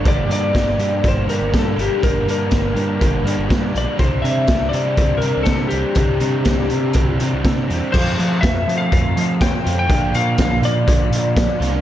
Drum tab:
CC |--------|--------|--------|--------|
HH |xxxxxxxx|xxxxxxxx|xxxxxxxx|xxxxxxxx|
SD |--o---o-|--o---o-|--o---o-|--o---o-|
BD |o-o-o-o-|o-o-o-o-|o-o-o-o-|o-o-o-o-|

CC |x-------|--------|
HH |-xxxxxxx|xxxxxxxx|
SD |--o---o-|--o---oo|
BD |o-o-o-o-|o-o-o-o-|